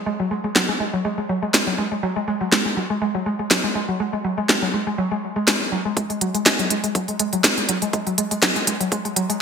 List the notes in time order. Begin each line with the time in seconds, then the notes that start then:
0.06 G#3
0.20 F#3
0.31 G#3
0.44 G#3
0.56 F#3, snare
0.69 G#3
0.80 G#3
0.94 F#3
1.05 G#3
1.18 G#3
1.29 F#3
1.43 G#3
1.54 G#3, snare
1.67 F#3
1.78 G#3
1.92 G#3
2.03 F#3
2.16 G#3
2.28 G#3
2.41 F#3
2.52 G#3, snare
2.66 G#3
2.77 F#3
2.90 G#3
3.02 G#3
3.15 F#3
3.26 G#3
3.39 G#3
3.51 F#3, snare
3.64 G#3
3.75 G#3
3.88 F#3
4.00 G#3
4.13 G#3
4.24 F#3
4.38 G#3
4.49 G#3, snare
4.62 F#3
4.74 G#3
4.87 G#3
4.98 F#3
5.12 G#3
5.36 G#3
5.47 G#3, snare
5.72 F#3
5.85 G#3
5.97 G#3, kick, closed hi-hat
6.10 G#3, closed hi-hat
6.21 F#3, closed hi-hat
6.35 G#3, closed hi-hat
6.46 G#3, kick, snare, closed hi-hat
6.59 F#3, closed hi-hat
6.70 G#3, closed hi-hat
6.84 G#3, closed hi-hat
6.95 F#3, kick, closed hi-hat
7.08 G#3, closed hi-hat
7.19 G#3, closed hi-hat
7.33 F#3, closed hi-hat
7.44 G#3, kick, snare, closed hi-hat
7.57 G#3, closed hi-hat
7.69 F#3, closed hi-hat
7.82 G#3, closed hi-hat
7.93 G#3, kick, closed hi-hat
8.07 F#3, closed hi-hat
8.18 G#3, closed hi-hat
8.31 G#3, closed hi-hat
8.43 F#3, kick, snare, closed hi-hat
8.56 G#3, closed hi-hat
8.67 G#3, closed hi-hat
8.80 F#3, closed hi-hat
8.92 G#3, kick, closed hi-hat
9.05 G#3, closed hi-hat
9.16 F#3, closed hi-hat
9.30 G#3, closed hi-hat